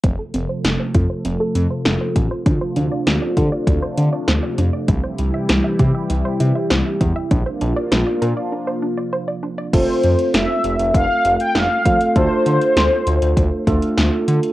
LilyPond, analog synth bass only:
\new Staff \with { instrumentName = "Analog synth bass" } { \clef bass \time 4/4 \key f \major \tempo 4 = 99 f,,16 r16 f,,16 r16 f,,16 r16 f,16 r16 f,,16 r16 f,16 r16 f,,16 r16 a,,16 r16 | d,16 r16 d,16 r16 d,16 r16 d16 r16 d,16 r16 d16 r16 d,16 r16 f,16 r16 | c,16 r16 c,16 r16 c,16 r16 c16 r16 c,16 r16 c16 r16 c,16 r16 e,16 r16 | bes,,16 r16 bes,,16 r16 bes,,16 r16 bes,16 r2 r16 |
f,,16 r16 f,16 r16 f,,16 r16 f,,16 f,,16 f,,16 r16 f,,16 r16 f,,16 r16 f,16 r16 | d,16 r16 d16 r16 d,16 r16 d,16 d,16 d,16 r16 d,16 r16 d,16 r16 d16 r16 | }